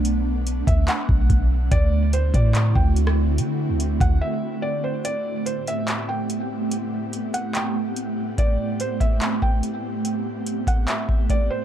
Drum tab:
HH |x---x-x-x---x---|x---x-x-x---x---|x---x-x---------|x---x-x-x---x---|
CP |--------x-------|--------x-------|----------------|--------x-------|
SD |----------------|-------------r--|----------------|----------------|
BD |------o---o-o---|o-----o---o-----|------o---------|----------------|

HH |x---x-x-x---x---|x---x-x-x---x---|x---x-x-x---x---|
CP |--------x-------|--------x-------|--------x-------|
SD |----------------|----------------|----------------|
BD |----------------|o-----o---o-----|------o---o-o---|